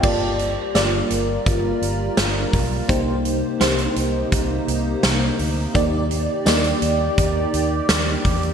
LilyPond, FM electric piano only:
\new Staff \with { instrumentName = "FM electric piano" } { \time 4/4 \key g \minor \tempo 4 = 84 << { <c'' a''>16 r2. r8. | r1 | r1 | } \\ { <bes f' g' d''>4 <bes f' g' d''>4.~ <bes f' g' d''>16 r4 r16 | <bes ees' g' c''>4 <bes ees' g' c''>4.~ <bes ees' g' c''>16 r4 r16 | <bes ees' g' d''>4 <bes ees' g' d''>4.~ <bes ees' g' d''>16 r4 r16 | } >> }